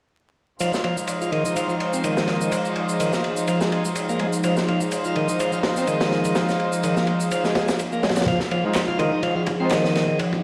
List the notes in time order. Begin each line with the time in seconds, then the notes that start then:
0.60 F3 G#3 D#4 F4 G#4 C5, ride, shaker
0.74 snare, shaker
0.84 F3, ride
0.97 shaker
1.07 ride, shaker
1.22 F4, shaker
1.32 D#3, ride
1.45 D#4, shaker
1.56 F3, ride, shaker
1.69 F4, shaker
1.80 ride
1.93 C4, shaker
2.04 D#3, ride, shaker
2.17 snare, shaker
2.27 snare, ride
2.41 D#3, shaker
2.52 ride, shaker
2.65 shaker
2.76 ride
2.89 shaker
3.00 D#3, ride, shaker
3.13 A#3, snare, shaker
3.24 ride
3.37 shaker
3.48 F3, ride, shaker
3.61 G#3, snare, shaker
3.72 G#3, ride
3.85 shaker
3.95 ride, shaker
4.09 A#3, shaker
4.19 G#3, ride
4.33 shaker
4.43 F3 G#3 D#4 F4 C5, ride, shaker
4.57 snare, shaker
4.68 F3, ride
4.81 shaker
4.92 ride, shaker
5.04 F4, shaker
5.16 D#3, ride
5.29 D#4, shaker
5.40 F3, ride, shaker
5.52 F4, shaker
5.63 snare, ride
5.76 C4, snare, shaker
5.87 D#3, ride, shaker
6.01 snare, ride, shaker
6.11 snare
6.25 D#3, ride, shaker
6.35 snare, ride, shaker
6.49 snare, shaker
6.60 ride
6.73 shaker
6.83 D#3, ride, shaker
6.97 A#3, snare, shaker
7.07 ride
7.20 shaker
7.31 F3, ride, shaker
7.44 G#3, snare, shaker
7.55 G#3, snare, ride
7.68 snare, ride, shaker
7.79 ride, shaker
7.92 A#3, shaker
8.03 G#3, snare, ride
8.09 snare, ride
8.16 snare, ride, shaker
8.21 snare, ride
8.27 F3 D#4 G#4, kick, ride
8.40 snare
8.51 F3, ride
8.65 G#3 D#4 F4 C5
8.75 snare, clap, ride
8.88 F4, kick
8.99 D#3 G#3 D#4 F4 C5, kick, ride
9.12 D#4
9.23 F3, ride
9.36 F4
9.46 kick, ride
9.60 G#3 C4 D#4 F4 C5
9.70 D#3, snare, clap, ride
9.85 snare
9.95 snare, ride
10.08 D#3
10.19 ride
10.33 kick